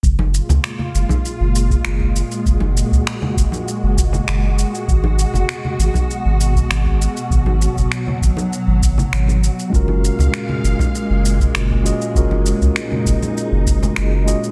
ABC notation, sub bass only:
X:1
M:4/4
L:1/16
Q:1/4=99
K:F#
V:1 name="Sub bass" clef=bass
F,,,2 z C,, z2 F,,, z2 F,,,2 z F,,,2 z2 | F,,,2 z C,, z2 F,,, z2 F,,,2 z F,,,2 z2 | G,,,2 z F,,, z2 G,,, z2 G,,,2 z G,,,2 z2 | G,,,2 z F,,, z2 G,,, z2 G,,,2 z G,,,2 z2 |
F,,,2 z C,, z2 F,,, z2 F,,,2 z F,,,2 z2 | F,,,2 z C,, z2 F,,, z2 F,,,2 z F,,,2 z2 |]